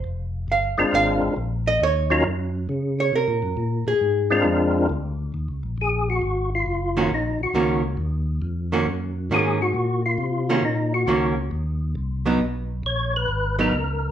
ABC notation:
X:1
M:4/4
L:1/8
Q:"Swing" 1/4=136
K:Ebdor
V:1 name="Tonewheel organ"
z3 [A,C=DFB]3 z2 | z [G,DEFB] z6 | z3 [A,C=DFB]3 z2 | z2 A G2 F3 |
E G2 z4 z | z2 A G2 F3 | E G2 z4 z | z2 d _c2 B3 |]
V:2 name="Hollow-body jazz guitar"
z2 f2 f z2 e | d3 z2 d B2- | B A3 z4 | z6 z [E,B,DG] |
z2 [E,B,DG] z4 [E,B,DG] | z2 [E,B,DG] z4 [E,B,DG] | z2 [E,B,DG] z4 [G,_CE] | z4 z [G,_CE] z2 |]
V:3 name="Tonewheel organ" clef=bass
F,,,2 =G,,, G,,, A,,, A,,, B,,,2 | E,,2 G,,2 D,2 (3C, B,, G,, | B,, B,, A,,2 F,,2 =D,,2 | (3E,, D,, B,,, B,,,2 A,,,2 G,,,2 |
B,,, B,,, D,,2 E,,2 F,,2 | G,,2 A,,2 B,,2 C,2 | B,,2 D,,2 E,,2 C,,2 | _C,,2 B,,,2 A,,,2 D,,2 |]